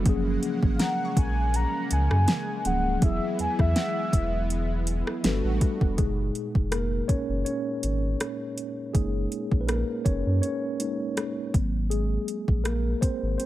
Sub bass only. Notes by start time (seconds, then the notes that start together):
0.06 F#1
0.63 G#1
1.17 A#1
1.91 C#2
2.11 F#2
2.65 C#1
3.02 E1
3.39 E2
3.59 E2
4.13 E1
5.24 G1
5.44 A1
5.81 E1
5.98 F#1
6.55 F1
7.09 F#1
7.29 F#1
7.84 G#1
8.95 F#1
9.52 A#1
10.06 F#1
10.26 F#2
11.54 G#1
12.48 A#1
13.02 G#1
13.23 G#1